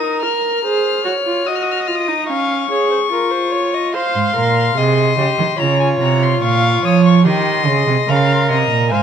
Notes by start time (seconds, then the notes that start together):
Already playing: D#4 A#4 D#6
0.23 A#4 F6
0.64 G#4 C5
1.04 F#4 C#5
1.26 F4
1.46 F#4 D#5 D#6
1.55 F6
1.63 D#6
1.71 F6
1.80 D#6
1.87 F4 F6
1.95 D#6
2.08 D#4
2.29 C#4 F5 C#6
2.70 G#4 C#5
2.91 C5
3.10 F4 A#4
3.30 C5
3.51 C#5
3.74 D#5
3.94 C5 F5 C6
4.15 G#2
4.35 A#2 A#4
4.76 C3 G#4 D#5
5.17 C#3 G4
5.38 D#3
5.58 C#3 F4 C#5 A#5
5.80 G#5
6.00 C3 A#5
6.23 C6
6.42 A#2 F5 C#6
6.83 F3 C#5 D#6
7.05 C#6
7.25 D#3 G4 D#5 C6
7.66 C#3 G#4
7.87 C3
8.08 C#3 A#4 F5 A#5
8.16 C6
8.25 A#5
8.32 C6
8.41 A#5
8.49 C3 D#5 C6
8.56 A#5
8.70 A#2
8.90 G#2 C5 F5 G#5